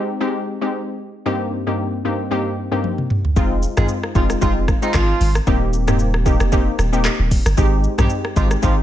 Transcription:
0.00 0.19 G#3 medium
0.00 0.19 C4 medium
0.00 0.19 D#4 medium
0.00 0.19 G4 medium
0.20 0.41 G#3 medium
0.20 0.41 C4 medium
0.20 0.41 D#4 medium
0.20 0.41 G4 loud
0.61 0.81 G#3 medium
0.61 0.81 C4 medium
0.61 0.81 D#4 medium
0.61 0.81 G4 medium
1.26 1.63 G2 medium
1.26 1.63 A#3 medium
1.26 1.63 C4 medium
1.26 1.63 D#4 medium
1.26 1.63 G4 loud
1.67 2.02 G2 medium
1.67 2.02 A#3 medium
1.67 2.02 C4 medium
1.67 2.02 D#4 medium
1.67 2.02 G4 medium
2.05 2.29 G2 medium
2.05 2.29 A#3 medium
2.05 2.29 C4 medium
2.05 2.29 D#4 medium
2.05 2.30 G4 medium
2.31 2.51 G2 medium
2.31 2.52 A#3 medium
2.31 2.52 C4 medium
2.31 2.52 D#4 medium
2.31 2.52 G4 loud
2.71 2.91 G2 medium
2.71 2.91 A#3 medium
2.71 2.91 C4 medium
2.71 2.91 D#4 medium
2.71 2.91 G4 medium
2.84 high tom medium
2.98 mid tom medium
3.10 mid tom medium
3.25 floor tom medium
3.36 3.66 F1 loud
3.36 3.74 G#3 loud
3.36 3.74 C4 medium
3.36 3.74 D#4 medium
3.36 3.74 F4 loud
3.36 kick loud
3.36 shaker medium
3.63 shaker soft
3.77 3.86 G#1 medium
3.77 4.12 G#3 medium
3.77 3.87 G#3 medium
3.77 4.13 C4 medium
3.77 4.13 D#4 medium
3.77 4.13 F4 medium
3.77 3.87 G#4 medium
3.77 cross-stick loud
3.77 mid tom loud
3.77 shaker medium
3.89 shaker medium
4.03 cross-stick medium
4.15 4.34 F1 loud
4.15 4.27 F3 medium
4.15 4.40 G#3 medium
4.15 4.40 C4 medium
4.15 4.40 D#4 medium
4.15 4.27 F4 medium
4.15 4.40 F4 medium
4.15 kick loud
4.15 shaker medium
4.30 cross-stick medium
4.30 shaker medium
4.41 4.71 F1 loud
4.41 4.53 F3 loud
4.41 4.62 G#3 loud
4.41 4.62 C4 medium
4.41 4.62 D#4 medium
4.41 4.53 F4 loud
4.41 4.62 F4 loud
4.41 kick loud
4.41 shaker medium
4.68 kick loud
4.68 cross-stick loud
4.68 shaker medium
4.82 4.92 D#3 medium
4.82 5.02 G#3 medium
4.82 5.02 C4 medium
4.82 4.92 D#4 medium
4.82 5.02 D#4 medium
4.82 5.02 F4 medium
4.82 shaker medium
4.94 5.13 G#1 loud
4.94 5.33 F3 loud
4.94 5.33 F4 loud
4.94 kick loud
4.94 cross-stick loud
4.94 clap loud
4.94 shaker medium
5.21 5.40 G#1 medium
5.21 open hi-hat medium
5.21 shaker medium
5.35 cross-stick loud
5.35 shaker medium
5.47 6.37 D#1 loud
5.47 5.84 A#3 loud
5.47 5.84 C4 medium
5.47 5.85 D#4 medium
5.47 5.85 G4 loud
5.47 kick loud
5.47 shaker medium
5.73 shaker soft
5.87 6.23 A#3 medium
5.87 6.23 C4 medium
5.87 6.23 D#4 medium
5.87 6.23 G4 medium
5.87 cross-stick loud
5.87 mid tom loud
5.87 shaker medium
5.99 shaker medium
6.14 cross-stick medium
6.26 6.50 A#3 medium
6.26 6.50 C4 medium
6.26 6.50 D#4 medium
6.26 6.51 G4 medium
6.26 kick loud
6.26 shaker medium
6.40 6.68 F1 medium
6.40 cross-stick medium
6.40 shaker medium
6.52 6.73 A#3 loud
6.52 6.73 C4 medium
6.52 6.73 D#4 medium
6.52 6.73 G4 loud
6.52 kick loud
6.52 shaker medium
6.79 7.08 D#1 medium
6.79 cross-stick loud
6.79 shaker medium
6.93 7.12 A#3 medium
6.93 7.12 C4 medium
6.93 7.12 D#4 medium
6.93 7.12 G4 medium
6.93 shaker medium
7.05 cross-stick loud
7.05 clap loud
7.05 shaker medium
7.19 7.38 D#1 medium
7.31 kick medium
7.31 open hi-hat medium
7.31 shaker medium
7.46 7.54 G1 loud
7.46 cross-stick loud
7.46 shaker medium
7.57 7.87 G#1 loud
7.57 7.95 G#3 medium
7.57 7.95 C4 medium
7.57 7.95 D#4 medium
7.57 7.95 G4 loud
7.57 kick loud
7.57 shaker medium
7.84 shaker soft
7.98 8.07 A#1 medium
7.98 8.08 G3 medium
7.98 8.34 G#3 medium
7.98 8.34 C4 medium
7.98 8.34 D#4 medium
7.98 8.34 G4 medium
7.98 8.08 G4 medium
7.98 cross-stick loud
7.98 mid tom loud
7.98 shaker medium
8.10 shaker medium
8.25 cross-stick medium
8.36 8.55 G#1 medium
8.36 8.48 F3 medium
8.36 8.61 G#3 medium
8.36 8.61 C4 medium
8.36 8.61 D#4 medium
8.36 8.48 F4 loud
8.36 8.61 G4 medium
8.36 kick loud
8.36 shaker medium
8.51 cross-stick loud
8.51 shaker medium
8.62 8.83 G#1 loud
8.62 8.74 F3 loud
8.62 8.83 G#3 medium
8.62 8.83 C4 medium
8.62 8.83 D#4 medium
8.62 8.74 F4 loud
8.62 8.83 G4 loud
8.62 kick medium
8.62 shaker medium

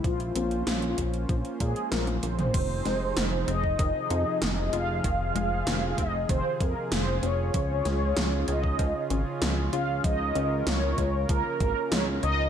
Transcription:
0.04 0.32 A#1 loud
0.04 0.34 F3 loud
0.04 2.52 A#3 medium
0.04 2.52 C#4 medium
0.04 2.52 F4 medium
0.04 1.88 F4 loud
0.04 2.52 C5 medium
0.04 kick loud
0.04 closed hi-hat medium
0.20 closed hi-hat soft
0.35 0.63 A#1 loud
0.35 0.57 C4 medium
0.35 closed hi-hat medium
0.51 closed hi-hat soft
0.67 0.95 A#1 medium
0.67 0.80 F3 medium
0.67 snare loud
0.67 closed hi-hat medium
0.82 closed hi-hat soft
0.98 1.26 A#1 loud
0.98 1.28 C#4 medium
0.98 kick medium
0.98 closed hi-hat loud
1.14 closed hi-hat soft
1.29 1.43 A#1 medium
1.29 1.59 F3 loud
1.29 kick loud
1.29 closed hi-hat medium
1.45 closed hi-hat soft
1.60 1.74 A#2 loud
1.60 1.73 F3 medium
1.60 1.90 G#4 medium
1.60 kick loud
1.60 closed hi-hat medium
1.76 closed hi-hat soft
1.92 2.20 A#1 loud
1.92 2.13 F3 medium
1.92 2.06 A#4 medium
1.92 snare loud
1.92 closed hi-hat medium
1.92 high tom medium
2.07 closed hi-hat soft
2.07 high tom medium
2.23 2.51 A#1 medium
2.23 2.36 A#3 medium
2.23 3.52 C5 loud
2.23 closed hi-hat medium
2.39 closed hi-hat soft
2.39 mid tom medium
2.54 2.82 F1 loud
2.54 7.50 C3 medium
2.54 2.84 D#3 loud
2.54 7.50 F3 medium
2.54 5.02 D#4 medium
2.54 10.00 G#4 medium
2.54 kick loud
2.54 closed hi-hat loud
2.54 crash loud
2.85 3.13 F1 medium
2.85 3.07 G#3 medium
2.85 snare soft
2.85 closed hi-hat medium
3.17 3.45 F1 medium
3.17 3.30 D#3 medium
3.17 snare loud
3.17 closed hi-hat loud
3.48 3.76 F1 medium
3.48 3.78 C4 medium
3.48 4.77 D#5 loud
3.48 closed hi-hat medium
3.64 kick medium
3.79 3.93 F1 medium
3.79 4.09 D#3 loud
3.79 kick loud
3.79 closed hi-hat medium
4.10 4.24 F2 loud
4.10 4.40 D#4 medium
4.10 closed hi-hat medium
4.42 4.70 F1 loud
4.42 4.55 D#3 medium
4.42 snare loud
4.42 closed hi-hat loud
4.73 5.01 F1 medium
4.73 4.94 F4 medium
4.73 6.02 F5 loud
4.73 closed hi-hat medium
5.04 5.32 F1 loud
5.04 5.17 D#3 loud
5.04 12.49 F4 medium
5.04 kick loud
5.04 closed hi-hat loud
5.35 5.63 F1 medium
5.35 5.65 G#3 medium
5.35 closed hi-hat medium
5.67 5.95 F1 medium
5.67 5.96 D#3 medium
5.67 snare loud
5.67 closed hi-hat loud
5.98 6.26 F1 loud
5.98 6.19 C4 loud
5.98 6.27 D#5 loud
5.98 kick medium
5.98 closed hi-hat medium
6.29 6.43 F1 medium
6.29 6.59 D#3 loud
6.29 6.58 C5 loud
6.29 kick loud
6.29 closed hi-hat medium
6.61 6.75 F2 loud
6.61 6.82 G#3 medium
6.61 6.93 A#4 loud
6.61 kick loud
6.61 closed hi-hat medium
6.92 7.20 F1 medium
6.92 7.05 D#3 medium
6.92 7.24 C5 loud
6.92 snare loud
6.92 closed hi-hat loud
7.23 7.51 F1 medium
7.23 7.53 C4 medium
7.23 8.52 C#5 loud
7.23 closed hi-hat medium
7.54 7.82 C#2 loud
7.54 10.02 C#3 medium
7.54 7.84 F3 loud
7.54 12.49 C#4 medium
7.54 kick loud
7.54 closed hi-hat loud
7.85 8.13 C#2 loud
7.85 8.15 G#4 medium
7.85 snare soft
7.85 closed hi-hat medium
8.17 8.45 C#2 loud
8.17 8.30 F3 medium
8.17 snare loud
8.17 closed hi-hat loud
8.48 8.76 C#2 loud
8.48 8.69 C#5 medium
8.48 9.38 D#5 loud
8.48 closed hi-hat medium
8.64 kick medium
8.79 8.93 C#2 medium
8.79 8.92 F3 loud
8.79 kick loud
8.79 closed hi-hat medium
9.10 9.24 G#1 loud
9.10 9.40 C#4 medium
9.10 closed hi-hat medium
9.42 9.70 C#2 medium
9.42 9.71 F3 medium
9.42 snare loud
9.42 closed hi-hat loud
9.73 10.01 C#2 medium
9.73 9.94 F4 loud
9.73 10.02 F5 loud
9.73 closed hi-hat medium
10.04 10.32 C#2 loud
10.04 12.49 C#3 medium
10.04 10.34 F3 loud
10.04 12.49 A#4 medium
10.04 10.69 D#5 loud
10.04 kick loud
10.04 closed hi-hat medium
10.35 10.63 C#2 medium
10.35 10.57 C#4 medium
10.35 closed hi-hat medium
10.67 10.95 C#2 loud
10.67 10.80 F3 medium
10.67 11.31 C#5 loud
10.67 snare loud
10.67 closed hi-hat medium
10.98 11.26 C#2 loud
10.98 11.28 F4 medium
10.98 kick medium
10.98 closed hi-hat medium
11.29 11.43 C#2 medium
11.29 11.59 F3 loud
11.29 11.59 A#4 loud
11.29 kick loud
11.29 closed hi-hat medium
11.60 11.74 G#1 loud
11.60 11.90 A#4 medium
11.60 11.93 A#4 loud
11.60 kick loud
11.60 closed hi-hat medium
11.92 12.20 C#2 medium
11.92 12.05 F3 medium
11.92 12.06 C#5 loud
11.92 snare loud
11.92 closed hi-hat medium
12.23 12.49 C#2 medium
12.23 12.44 C#5 medium
12.23 12.49 D#5 loud
12.23 closed hi-hat medium

